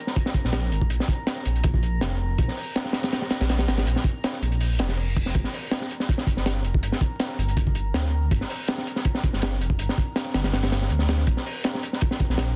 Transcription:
Already playing: A#4 A#5
0.07 snare
0.16 kick, closed hi-hat
0.26 snare
0.34 kick, closed hi-hat
0.45 A#1, snare
0.53 snare, closed hi-hat
0.72 G#1, closed hi-hat
0.81 kick
0.90 A#1, closed hi-hat
1.00 snare
1.08 kick, closed hi-hat
1.27 snare, closed hi-hat
1.45 A#1, closed hi-hat
1.56 closed hi-hat
1.64 A#1, kick, closed hi-hat
1.74 kick
1.83 closed hi-hat
2.01 F1, snare, closed hi-hat
2.38 A#1, kick, closed hi-hat
2.48 snare
2.57 open hi-hat
2.76 snare, closed hi-hat
2.85 snare
2.93 snare, closed hi-hat
3.03 snare, closed hi-hat
3.13 snare, closed hi-hat
3.22 snare
3.30 snare, closed hi-hat
3.41 A#1, snare, closed hi-hat
3.49 snare, closed hi-hat
3.59 snare, closed hi-hat
3.68 G#1, snare, closed hi-hat
3.78 snare, closed hi-hat
3.86 A#1, closed hi-hat
3.96 snare
4.04 kick, closed hi-hat
4.24 snare, closed hi-hat
4.42 A#1, closed hi-hat
4.52 closed hi-hat
4.60 open hi-hat, reverse cymbal
4.79 F1, snare, closed hi-hat
4.89 snare
5.17 kick, closed hi-hat
5.26 snare
5.35 G1 A#4 A#5, kick, closed hi-hat
5.44 snare
5.54 open hi-hat
5.71 snare, closed hi-hat
5.81 snare
5.91 closed hi-hat
6.00 snare
6.09 kick, closed hi-hat
6.18 snare
6.27 kick, closed hi-hat
6.37 G1, snare
6.46 snare, closed hi-hat
6.64 F1, closed hi-hat
6.74 kick
6.83 G1, closed hi-hat
6.92 snare
7.01 kick, closed hi-hat
7.20 snare, closed hi-hat
7.38 G1, closed hi-hat
7.49 closed hi-hat
7.57 G1, kick, closed hi-hat
7.67 kick
7.75 closed hi-hat
7.94 D2, snare, closed hi-hat
8.31 G1, kick, closed hi-hat
8.41 snare
8.50 open hi-hat
8.68 snare, closed hi-hat
8.78 snare
8.87 closed hi-hat
8.96 snare
9.05 kick, closed hi-hat
9.15 snare
9.24 kick, closed hi-hat
9.33 G1, snare
9.42 snare, closed hi-hat
9.61 F1, closed hi-hat
9.70 kick
9.79 G1, closed hi-hat
9.89 snare
9.98 kick, closed hi-hat
10.16 snare, closed hi-hat
10.34 G1, snare, closed hi-hat
10.44 snare, closed hi-hat
10.53 G1, snare, closed hi-hat
10.63 snare, closed hi-hat
10.72 snare, closed hi-hat
10.82 snare
10.90 D2, closed hi-hat
10.99 snare
11.09 snare, closed hi-hat
11.18 snare
11.27 A#1, kick, closed hi-hat
11.37 snare
11.46 open hi-hat
11.64 snare, closed hi-hat
11.75 snare
11.83 closed hi-hat
11.93 snare
12.01 kick, closed hi-hat
12.11 snare
12.20 kick, closed hi-hat
12.30 A#1, snare
12.38 snare, closed hi-hat

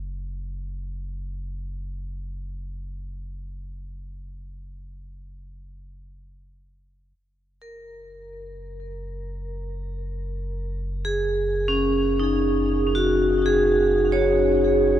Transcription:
Already playing: F#1
7.15 F#1
7.62 A#4
11.05 G#4
11.68 C#4
12.20 D#4
12.95 F#4
13.46 G#4
14.12 C#5

